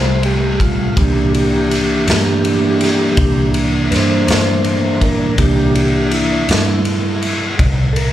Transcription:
Already playing: fingered electric bass C2, tonewheel organ G3 A3 C5
0.23 tonewheel organ G4, ride
0.60 tonewheel organ F4, kick, ride
0.97 fingered electric bass C2, tonewheel organ E3 A#3 D4 G4, kick, ride
1.34 tonewheel organ G4, ride
1.71 ride
2.07 fingered electric bass G2, snare, ride
2.45 ride
2.81 snare, ride
3.17 fingered electric bass C2, kick, ride
3.54 ride
3.90 fingered electric bass G2, tonewheel organ B4, snare, ride
3.95 tonewheel organ C5
4.28 fingered electric bass G2, snare, ride
4.64 ride
5.01 tonewheel organ A#4, kick, ride
5.38 fingered electric bass C2, tonewheel organ E3 A#3 D4 G4, kick, ride
5.75 tonewheel organ G4, ride
6.11 tonewheel organ E4, ride
6.48 fingered electric bass G2, tonewheel organ E3 A#3 D4, snare, ride
6.85 ride
7.22 ride
7.59 fingered electric bass C2, kick, ride
7.93 tonewheel organ A4, ride
7.97 tonewheel organ A#4

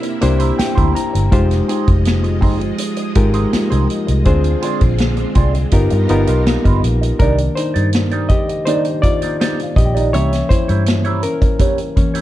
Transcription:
Already playing: string machine C3 A#3 E4, reed electric piano A#3 D4 E4 G4 C5
0.02 muted clean electric guitar stroke, closed hi-hat
0.21 fingered electric bass C2, reed electric piano A#3 D4 E4 G4 C5, closed hi-hat
0.39 clean electric guitar A#3 E4 G4 C5, closed hi-hat
0.58 reed electric piano G5, muted clean electric guitar stroke, muted fingered electric bass stroke, snare, closed hi-hat
0.75 fingered electric bass D2, clean electric guitar A#3 E4 G4 C5, kick, closed hi-hat
0.95 celesta E4, reed electric piano A#5, muted clean electric guitar stroke, closed hi-hat
1.13 fingered electric bass G1, muted clean electric guitar stroke, closed hi-hat
1.31 fingered electric bass F1, string machine F3 G#3 D#5, reed electric piano G#3 D#4 F4 G4 C5, kick, closed hi-hat
1.51 snare, closed hi-hat
1.68 clean electric guitar C4 D#4 G#4 C5, closed hi-hat
1.88 fingered electric bass F1, kick, closed hi-hat
2.05 snare, closed hi-hat
2.24 muted clean electric guitar stroke, closed hi-hat
2.41 fingered electric bass G1, clean electric guitar C4 D#4 G#4 C5, kick, open hi-hat
2.60 muted clean electric guitar stroke, closed hi-hat
2.78 muted clean electric guitar stroke, closed hi-hat
2.96 muted clean electric guitar stroke, closed hi-hat
3.15 fingered electric bass G#1, reed electric piano G#3 D#4 F4 G4 A#4, celesta A#4, kick, closed hi-hat
3.34 clean electric guitar C4 D#4 G#4 C5, closed hi-hat
3.53 muted fingered electric bass stroke, snare, closed hi-hat
3.70 fingered electric bass C2, clean electric guitar C4 D#4 G#4 C5, closed hi-hat
3.89 muted clean electric guitar stroke, closed hi-hat
4.07 fingered electric bass C2, muted clean electric guitar stroke, closed hi-hat
4.25 fingered electric bass D2, string machine D3 G#3 C4 F4, reed electric piano C4 D4 F4 G#4 C5, kick, closed hi-hat
4.44 closed hi-hat
4.62 clean electric guitar C4 F4 G#4 D5, closed hi-hat
4.81 fingered electric bass A#1, kick, closed hi-hat
4.98 snare, closed hi-hat
5.17 muted clean electric guitar stroke, closed hi-hat
5.35 fingered electric bass C2, clean electric guitar C4 F4 G#4 D5, kick, closed hi-hat
5.55 muted clean electric guitar stroke, closed hi-hat
5.71 fingered electric bass G1, string machine G3 B3 D#4 F4 A#4, reed electric piano B3 D#4 F4 G4 A#4, muted clean electric guitar stroke, kick, closed hi-hat
5.90 fingered electric bass G2, muted clean electric guitar stroke, closed hi-hat
6.09 fingered electric bass G1, reed electric piano B3 D#4 F4 G4 A#4, closed hi-hat
6.27 fingered electric bass B1, clean electric guitar B3 F4 A#4 D#5, closed hi-hat
6.46 muted clean electric guitar stroke, snare, closed hi-hat
6.64 fingered electric bass G1, clean electric guitar B3 F4 A#4 D#5, kick, closed hi-hat
6.83 fingered electric bass A#1, muted clean electric guitar stroke, closed hi-hat
7.01 muted clean electric guitar stroke, closed hi-hat
7.19 fingered electric bass C2, reed electric piano D#3 A#3 D4 A#4, clean electric guitar A#3 D#4 G4 D5, kick, closed hi-hat
7.38 closed hi-hat
7.55 reed electric piano D#4 C5, celesta D5, muted clean electric guitar stroke, closed hi-hat
7.74 fingered electric bass G2, clean electric guitar A#3 D#4 G4 D5, closed hi-hat
7.93 muted clean electric guitar stroke, snare, closed hi-hat
8.11 clean electric guitar A#3 D#4 G4 D5, closed hi-hat
8.29 reed electric piano G4 D#5, muted clean electric guitar stroke, kick, closed hi-hat
8.49 muted clean electric guitar stroke, closed hi-hat
8.65 reed electric piano D#3 A#3 D4 D#4 C5, clean electric guitar A#3 D#4 G4 D5, closed hi-hat
8.85 closed hi-hat
9.02 reed electric piano F4 D5, muted clean electric guitar stroke, kick, closed hi-hat
9.22 clean electric guitar A#3 D#4 G4 D5, closed hi-hat
9.40 clean electric guitar A#3 D#4 G4 D5, celesta C5, snare, closed hi-hat
9.59 celesta F5, closed hi-hat
9.76 fingered electric bass A#1, reed electric piano G4 D#5, muted clean electric guitar stroke, kick, closed hi-hat
9.85 celesta G5
9.94 clean electric guitar A#3 D#4 G4 D5, closed hi-hat
10.13 fingered electric bass C2, reed electric piano E3 A#3 C#4 C#5 E5, clean electric guitar A#3 E4 G4 C#5, closed hi-hat
10.33 snare, closed hi-hat
10.49 reed electric piano E4 C5, muted clean electric guitar stroke, kick, closed hi-hat
10.68 fingered electric bass G2, clean electric guitar A#3 E4 G4 C#5, closed hi-hat
10.86 muted clean electric guitar stroke, snare, closed hi-hat
11.05 clean electric guitar A#3 E4 G4 C#5, closed hi-hat
11.23 reed electric piano C#4 A#4, muted clean electric guitar stroke, closed hi-hat
11.42 muted clean electric guitar stroke, kick, closed hi-hat
11.59 clean electric guitar A#3 E4 G4 C#5, kick, closed hi-hat
11.78 closed hi-hat
11.96 reed electric piano E3 A#3 C#4, muted clean electric guitar stroke, kick, closed hi-hat
12.14 clean electric guitar A#3 E4 G4 C#5, closed hi-hat

